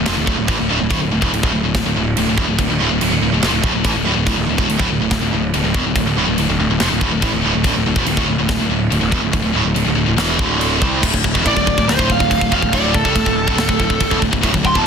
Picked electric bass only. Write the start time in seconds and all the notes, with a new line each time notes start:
0.08 F1
0.18 D1
0.28 D1
0.38 D1
0.48 A1
0.60 D1
0.70 D1
0.82 D1
0.91 D1
1.02 D1
1.12 D1
1.22 E1
1.33 D1
1.43 D1
1.54 D1
1.63 D1
1.75 D1
1.84 D1
1.95 D1
2.17 D1
2.27 D1
2.38 E1
2.48 D1
2.59 D1
2.69 D1
2.80 D1
2.91 D1
3.02 D1
3.11 D1
3.20 D1
3.31 D1
3.41 F1
3.52 D1
3.63 D1
3.74 D1
3.84 A1
3.94 D1
4.06 D1
4.16 D1
4.27 D1
4.38 D1
4.47 D1
4.59 E1
4.68 D1
4.80 D1
4.90 D1
5.01 D1
5.12 D1
5.22 D1
5.32 D1
5.53 D1
5.64 D1
5.75 E1
5.84 D1
5.96 D1
6.05 D1
6.16 D1
6.26 D1
6.37 D1
6.48 D1
6.58 D1
6.69 D1
6.80 F1
6.91 D1
7.02 D1
7.13 D1
7.22 A1
7.34 D1
7.44 D1
7.55 D1
7.65 D1
7.76 D1
7.86 D1
7.96 E1
8.07 D1
8.18 D1
8.28 D1
8.38 D1
8.49 D1
8.59 D1
8.69 D1
8.91 D1
9.02 D1
9.12 E1
9.22 D1
9.33 D1
9.44 D1
9.53 D1
9.65 D1
9.75 D1
9.86 D1
9.96 D1
10.07 D1
10.17 E1
10.39 D1
10.82 C2
11.03 D1
11.14 D1
11.25 D1
11.36 E1
11.46 A1
11.57 D1
11.67 D1
11.78 D1
11.88 D1
12.00 D1
12.10 D1
12.20 D1
12.31 D1
12.41 D1
12.53 E1
12.62 D1
12.73 D1
12.94 D1
13.06 C2
13.16 D1
13.27 D1
13.48 D1
13.58 D1
13.69 D1
13.80 D1
13.90 D1
14.01 D1
14.11 E1
14.22 D1
14.33 D1
14.44 D1
14.54 D1
14.65 D1
14.76 E1